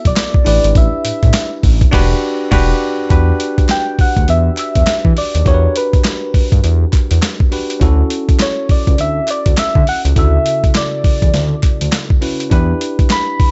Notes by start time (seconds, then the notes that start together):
Already playing: B3 E4 F#4 A4
0.05 B1 D5, kick, closed hi-hat
0.17 snare, clap, closed hi-hat, tambourine
0.34 kick
0.45 A1 D4 E4 G4 B4 D5, open hi-hat, tambourine
0.64 G#1, closed hi-hat
0.75 A1 E5, kick, closed hi-hat, tambourine
1.05 A2, closed hi-hat, tambourine
1.23 A2, kick, closed hi-hat
1.34 snare, clap, closed hi-hat, tambourine
1.63 A1, kick, open hi-hat, tambourine
1.81 kick, closed hi-hat
1.91 E1 D4 F#4 G4 B4, kick, snare, crash
2.51 E1 D4 F#4 G4 B4, kick, snare, crash
3.09 E2 D4 F#4 G4 B4, kick, closed hi-hat
3.40 closed hi-hat
3.58 D2, kick, closed hi-hat
3.69 G5, snare, clap, closed hi-hat
3.99 D2 F#5, kick, open hi-hat
4.17 D2, kick, closed hi-hat
4.28 E2 E5, closed hi-hat
4.57 E5, clap, closed hi-hat
4.75 E2, kick, closed hi-hat
4.87 snare, clap, closed hi-hat
5.05 E3, kick
5.17 D5, open hi-hat
5.35 D#2, closed hi-hat
5.45 E2 D4 F#4 G4 A#4 C#5, kick, closed hi-hat
5.54 B4
5.76 B4, closed hi-hat
5.93 G2, kick, closed hi-hat
6.05 snare, clap, closed hi-hat
6.34 G2, kick, open hi-hat
6.52 G2, kick, closed hi-hat
6.64 E2, closed hi-hat
6.93 kick, clap, closed hi-hat
7.11 E2, closed hi-hat
7.23 snare, clap, closed hi-hat
7.40 kick
7.51 D4 F#4 G4 B4, open hi-hat
7.70 closed hi-hat
7.80 D2 C#4 E4 F#4 A4, kick, closed hi-hat
8.10 closed hi-hat
8.29 C#2, kick, closed hi-hat
8.40 C#5, snare, clap, closed hi-hat
8.69 C#2 D5, kick, open hi-hat
8.87 C#2, kick, closed hi-hat
8.98 D2 E5, closed hi-hat
9.28 D5, clap, closed hi-hat
9.46 D2, kick, closed hi-hat
9.58 E5, snare, clap, closed hi-hat
9.75 D3, kick
9.87 F#5, open hi-hat
10.05 C#2, closed hi-hat
10.15 D2 C#3 E4 F#4 A4 E5, kick, closed hi-hat
10.46 closed hi-hat
10.64 E2, kick, closed hi-hat
10.75 D5, snare, clap, closed hi-hat
11.04 E2, kick, open hi-hat
11.22 E2, kick, closed hi-hat
11.34 D2, snare, closed hi-hat
11.63 kick, clap, closed hi-hat
11.81 D2, closed hi-hat
11.92 snare, clap, closed hi-hat
12.10 kick
12.21 C#4 E4 F#4 B4, open hi-hat
12.40 closed hi-hat
12.50 E2 D4 E4 G4 B4, kick, closed hi-hat
12.81 closed hi-hat
12.99 D2, kick, closed hi-hat
13.10 B5, snare, clap, closed hi-hat
13.40 D2, kick, open hi-hat